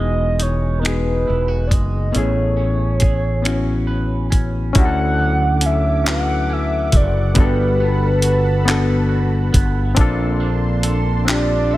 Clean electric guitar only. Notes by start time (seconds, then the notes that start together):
Already playing: E3 G#3
0.39 D#4
0.83 G#3
1.27 E4
1.48 F#4
1.69 G#3
2.13 A3
2.57 C#4
3.00 G#4
3.44 C#4
3.87 B4
4.30 C#4
4.75 D3
5.19 F#3
5.63 C#4
6.06 F#3
6.50 C#4
6.94 F#3
7.37 G3
7.80 B3
8.24 F#4
8.67 B3
9.09 F#4
9.53 B3
9.96 A#3
10.40 D4
10.83 A4
11.26 D4
11.70 A4